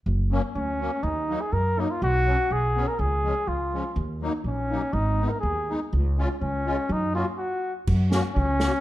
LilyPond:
<<
  \new Staff \with { instrumentName = "Trumpet" } { \time 2/4 \key fis \major \tempo 4 = 123 r4 cis'4 | dis'8. gis'16 ais'8 dis'16 eis'16 | fis'4 gis'8. ais'16 | gis'4 eis'4 |
r4 cis'4 | dis'8. ais'16 gis'8. r16 | r4 cis'4 | dis'8 eis'8 fis'8. r16 |
r4 cis'4 | }
  \new Staff \with { instrumentName = "Accordion" } { \time 2/4 \key fis \major r8 <fis ais cis'>8 r8 <fis ais cis'>8 | r8 <fis ais dis'>8 r8 <fis ais dis'>8 | r8 <fis b cis'>8 r8 <fis b cis'>8 | r8 <eis gis cis'>8 r8 <eis gis cis'>8 |
r8 <fis ais dis'>8 r8 <fis ais dis'>8 | r8 <gis b dis'>8 r8 <gis b dis'>8 | r8 <gis cis' eis'>8 r8 <gis cis' eis'>8 | r8 <ais cis' fis'>8 r4 |
r8 <ais cis' fis'>8 r8 <ais cis' fis'>8 | }
  \new Staff \with { instrumentName = "Upright bass" } { \clef bass \time 2/4 \key fis \major fis,,4 d,4 | dis,4 fis,4 | b,,4 b,,4 | cis,4 cis,4 |
dis,4 ais,,4 | gis,,4 dis,4 | cis,4 cis,4 | fis,4 r4 |
fis,4 cis,4 | }
  \new DrumStaff \with { instrumentName = "Drums" } \drummode { \time 2/4 r4 r4 | r4 r4 | r4 r4 | r4 r4 |
r4 r4 | r4 r4 | r4 r4 | r4 r4 |
<cymc bd>8 sn8 bd8 sn8 | }
>>